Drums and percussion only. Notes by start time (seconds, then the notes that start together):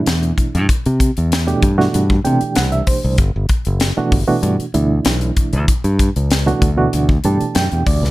0.06 snare, closed hi-hat
0.23 closed hi-hat
0.38 kick, closed hi-hat
0.55 closed hi-hat
0.69 kick, closed hi-hat
0.86 closed hi-hat
1.00 kick, closed hi-hat
1.17 closed hi-hat
1.32 snare, closed hi-hat
1.48 closed hi-hat
1.63 kick, closed hi-hat
1.80 snare
1.94 closed hi-hat
2.10 kick
2.25 closed hi-hat
2.41 closed hi-hat
2.55 snare, closed hi-hat
2.72 closed hi-hat
2.87 kick, open hi-hat
3.18 kick, closed hi-hat
3.49 kick, closed hi-hat
3.65 closed hi-hat
3.80 snare, closed hi-hat
4.12 kick, open hi-hat
4.43 closed hi-hat
4.60 closed hi-hat
4.74 closed hi-hat
5.05 snare, closed hi-hat
5.21 closed hi-hat
5.37 kick, closed hi-hat
5.53 closed hi-hat
5.68 kick, closed hi-hat
5.84 closed hi-hat
5.99 kick, closed hi-hat
6.16 closed hi-hat
6.31 snare, closed hi-hat
6.48 closed hi-hat
6.62 kick, closed hi-hat
6.93 closed hi-hat
7.09 kick
7.24 closed hi-hat
7.41 closed hi-hat
7.55 snare, closed hi-hat
7.72 closed hi-hat
7.86 kick, open hi-hat
8.04 snare